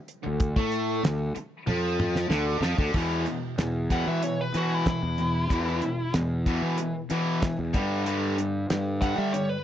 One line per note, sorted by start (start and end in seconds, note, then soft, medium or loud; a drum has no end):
0.08 closed hi-hat medium
0.23 0.55 D2 medium
0.23 0.49 D3 medium
0.40 kick loud
0.40 closed hi-hat medium
0.56 1.00 A2 loud
0.56 1.03 A3 loud
0.56 kick loud
0.56 snare soft
0.72 closed hi-hat medium
1.03 1.33 D2 medium
1.03 1.29 D3 medium
1.03 snare loud
1.03 closed hi-hat medium
1.35 muted distorted electric guitar stroke medium
1.35 muted fingered electric bass stroke soft
1.35 closed hi-hat medium
1.67 2.27 F2 medium
1.67 2.29 F3 loud
1.67 high tom medium
2.00 mid tom medium
2.16 snare medium
2.29 2.60 D2 medium
2.29 2.61 D3 loud
2.29 snare medium
2.61 2.76 F2 medium
2.61 2.77 F3 loud
2.61 snare medium
2.78 2.93 D2 medium
2.78 2.93 D3 medium
2.78 kick medium
2.94 3.25 E2 medium
2.94 3.25 B2 medium
2.94 3.25 E3 medium
2.94 kick loud
2.94 crash loud
3.26 3.55 E2 medium
3.26 3.55 B2 medium
3.26 closed hi-hat medium
3.58 3.87 E2 medium
3.58 4.03 E2 medium
3.58 3.87 B2 medium
3.58 snare medium
3.58 closed hi-hat medium
3.90 4.20 E2 medium
3.90 4.21 B2 medium
3.90 4.21 E3 loud
3.90 4.07 F#5 medium
3.90 kick medium
3.90 snare soft
3.90 closed hi-hat medium
4.07 4.37 E3 medium
4.07 4.23 E5 medium
4.22 4.51 E2 medium
4.22 4.52 B2 medium
4.22 4.38 C#5 medium
4.22 closed hi-hat medium
4.41 4.55 B4 medium
4.54 4.84 E2 medium
4.54 4.85 B2 medium
4.54 5.00 E3 medium
4.54 4.85 E3 medium
4.54 4.74 F#4 medium
4.54 closed hi-hat medium
4.74 4.88 E4 medium
4.86 5.15 E2 medium
4.86 5.15 B2 medium
4.86 6.12 E4 medium
4.86 kick medium
4.86 snare loud
4.86 closed hi-hat medium
5.03 5.48 E2 medium
5.18 5.47 E2 medium
5.18 5.47 B2 medium
5.18 closed hi-hat medium
5.49 5.80 E2 medium
5.49 5.80 B2 medium
5.49 5.80 E3 medium
5.49 kick loud
5.49 closed hi-hat medium
5.67 snare soft
5.82 6.11 E2 medium
5.82 6.11 B2 medium
5.82 closed hi-hat medium
6.14 6.43 E2 medium
6.14 6.60 E2 medium
6.14 6.43 B2 medium
6.14 snare medium
6.14 closed hi-hat medium
6.46 6.76 E2 medium
6.46 6.76 B2 medium
6.46 6.77 E3 medium
6.46 kick medium
6.46 closed hi-hat medium
6.62 6.92 E3 loud
6.78 7.07 E2 medium
6.78 7.07 B2 medium
6.78 closed hi-hat loud
7.10 7.40 E2 medium
7.10 7.40 B2 medium
7.10 7.56 E3 medium
7.10 7.41 E3 loud
7.10 closed hi-hat medium
7.42 7.71 E2 medium
7.42 7.71 B2 medium
7.42 kick medium
7.42 snare loud
7.42 closed hi-hat medium
7.59 7.73 E2 medium
7.73 8.03 G2 medium
7.73 8.66 G2 loud
7.73 8.04 D3 medium
7.73 8.04 G3 loud
7.73 kick loud
7.73 closed hi-hat medium
8.06 8.36 G2 medium
8.06 8.36 D3 medium
8.06 8.36 G3 medium
8.06 closed hi-hat medium
8.38 8.66 G2 medium
8.38 8.67 D3 medium
8.38 closed hi-hat medium
8.70 8.99 G2 medium
8.70 9.15 G2 medium
8.70 8.99 D3 medium
8.70 snare medium
8.70 closed hi-hat medium
9.01 9.32 G2 medium
9.01 9.32 D3 loud
9.01 9.32 G3 loud
9.01 9.18 F#5 medium
9.01 kick medium
9.01 snare soft
9.01 closed hi-hat medium
9.18 9.48 G3 medium
9.18 9.33 E5 medium
9.32 9.62 G2 medium
9.32 9.62 D3 medium
9.32 9.49 C#5 medium
9.32 closed hi-hat medium
9.49 9.64 B4 medium